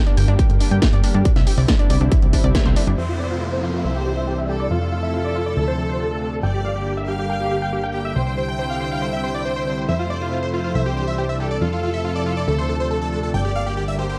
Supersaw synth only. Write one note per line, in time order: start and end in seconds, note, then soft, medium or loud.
2.98 3.05 E5 medium
3.09 3.15 F4 medium
3.20 3.26 D5 medium
3.30 3.37 F4 medium
3.41 3.48 F4 medium
3.52 3.59 C5 medium
3.63 3.69 F4 medium
3.74 3.80 F4 medium
3.84 3.91 E5 medium
3.95 4.02 G4 medium
4.06 4.12 G4 medium
4.17 4.23 E5 medium
4.27 4.34 G4 medium
4.38 4.45 E5 medium
4.49 4.56 G4 medium
4.60 4.66 D5 medium
4.71 4.77 F4 medium
4.82 4.88 F4 medium
4.92 4.99 F4 medium
5.03 5.09 E5 medium
5.14 5.20 F4 medium
5.24 5.31 D5 medium
5.35 5.42 F4 medium
5.46 5.53 D5 medium
5.57 5.63 A4 medium
5.68 5.74 C5 medium
5.78 5.85 A4 medium
5.89 5.96 C5 medium
6.00 6.07 A4 medium
6.11 6.17 A4 medium
6.22 6.28 A4 medium
6.33 6.39 A4 medium
6.43 6.50 G5 loud
6.54 6.61 G4 medium
6.65 6.71 F5 medium
6.76 6.82 G4 medium
6.86 6.93 G4 medium
6.97 7.04 E5 medium
7.08 7.15 G4 medium
7.19 7.25 G4 medium
7.30 7.36 G5 medium
7.40 7.47 G4 medium
7.51 7.58 G4 medium
7.62 7.69 G5 medium
7.73 7.79 G4 medium
7.83 7.90 G5 medium
7.94 8.01 G4 medium
8.05 8.12 E5 medium
8.16 8.22 C5 medium
8.27 8.33 C5 medium
8.37 8.44 C5 medium
8.48 8.55 G5 medium
8.59 8.66 C5 medium
8.70 8.76 F5 medium
8.81 8.87 C5 medium
8.91 8.98 F5 medium
9.02 9.09 C5 medium
9.13 9.20 E5 medium
9.24 9.30 C5 medium
9.34 9.41 D5 medium
9.45 9.52 C5 medium
9.56 9.63 C5 medium
9.67 9.74 C5 medium
9.78 9.84 C5 medium
9.89 9.95 E5 medium
9.99 10.06 F4 medium
10.10 10.17 D5 medium
10.21 10.28 F4 medium
10.32 10.38 F4 medium
10.43 10.49 C5 medium
10.54 10.60 F4 medium
10.64 10.71 F4 medium
10.75 10.82 E5 medium
10.86 10.92 G4 medium
10.97 11.03 G4 medium
11.07 11.14 E5 medium
11.18 11.25 G4 medium
11.29 11.36 E5 medium
11.40 11.46 G4 medium
11.51 11.57 D5 medium
11.62 11.68 F4 medium
11.72 11.79 F4 medium
11.83 11.89 F4 medium
11.94 12.00 E5 medium
12.05 12.11 F4 medium
12.16 12.22 D5 medium
12.26 12.33 F4 medium
12.37 12.43 D5 medium
12.48 12.54 A4 medium
12.58 12.65 C5 medium
12.69 12.76 A4 medium
12.80 12.87 C5 medium
12.91 12.97 A4 medium
13.02 13.08 A4 medium
13.12 13.19 A4 medium
13.23 13.30 A4 medium
13.34 13.41 G5 loud
13.45 13.51 G4 medium
13.56 13.62 F5 medium
13.66 13.73 G4 medium
13.77 13.84 G4 medium
13.88 13.95 E5 medium
13.99 14.05 G4 medium
14.09 14.16 G4 medium